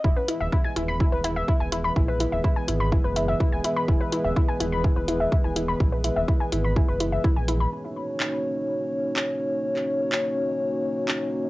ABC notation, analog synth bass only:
X:1
M:4/4
L:1/16
Q:1/4=125
K:Ebphr
V:1 name="Analog synth bass" clef=bass
E,,, z2 E,,, z2 E,,,2 z E,,,2 z2 E,,,2 z | B,,,2 z E,,, z2 ^G,,,2 z _G,,,2 z2 E,,, z2 | E,,, z2 E,,, z2 E,,,2 z E,,,2 z2 E,,,2 z | B,,,2 z E,,, z2 ^G,,,2 z _G,,,2 z2 B,,,2 z |
z16 | z16 |]